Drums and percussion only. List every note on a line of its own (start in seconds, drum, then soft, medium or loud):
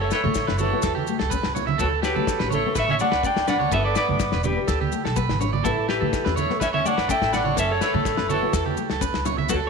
0.11 snare medium
0.11 maracas medium
0.24 high conga medium
0.35 kick medium
0.35 snare medium
0.35 maracas medium
0.48 snare medium
0.58 high conga medium
0.58 low conga medium
0.58 maracas medium
0.82 kick medium
0.82 snare medium
0.82 maracas medium
0.96 high conga medium
1.07 maracas medium
1.20 snare medium
1.31 kick medium
1.31 maracas medium
1.43 snare medium
1.56 low conga medium
1.56 maracas medium
1.68 high conga medium
1.79 kick medium
1.79 maracas medium
2.03 snare medium
2.03 maracas medium
2.16 high conga medium
2.27 kick medium
2.27 snare medium
2.27 maracas medium
2.40 snare medium
2.51 high conga medium
2.51 low conga medium
2.51 maracas medium
2.76 kick medium
2.76 snare medium
2.76 maracas medium
2.88 high conga medium
2.99 maracas medium
3.12 snare medium
3.23 kick medium
3.23 maracas medium
3.37 snare medium
3.48 snare medium
3.48 low conga medium
3.48 maracas medium
3.61 high conga medium
3.72 kick medium
3.72 low conga medium
3.72 maracas medium
3.96 snare medium
3.96 maracas medium
4.09 high conga medium
4.20 kick medium
4.20 snare medium
4.20 maracas medium
4.32 snare medium
4.44 high conga medium
4.44 low conga medium
4.44 maracas medium
4.68 kick medium
4.68 snare medium
4.68 maracas medium
4.82 high conga medium
4.92 maracas medium
5.05 snare medium
5.16 kick medium
5.16 maracas medium
5.29 snare medium
5.29 high conga medium
5.41 low conga medium
5.41 maracas medium
5.54 high conga medium
5.65 kick medium
5.65 maracas medium
5.89 snare medium
6.02 high conga medium
6.13 kick medium
6.13 snare medium
6.13 maracas medium
6.26 snare medium
6.37 high conga medium
6.37 low conga medium
6.37 maracas medium
6.50 snare soft
6.61 kick medium
6.61 snare medium
6.61 maracas medium
6.74 high conga medium
6.86 maracas medium
6.98 snare medium
7.09 kick medium
7.09 maracas medium
7.22 snare medium
7.33 snare medium
7.33 low conga medium
7.33 maracas medium
7.46 high conga medium
7.57 kick medium
7.57 maracas loud
7.81 snare medium
7.81 maracas medium
7.94 high conga medium
8.05 kick medium
8.05 snare medium
8.05 maracas medium
8.17 snare medium
8.30 high conga medium
8.30 low conga medium
8.30 maracas medium
8.53 kick medium
8.53 snare medium
8.53 maracas medium
8.66 high conga medium
8.77 maracas medium
8.90 snare medium
9.01 kick medium
9.01 maracas medium
9.14 snare medium
9.26 low conga medium
9.26 maracas medium
9.38 high conga medium
9.49 kick medium
9.49 maracas medium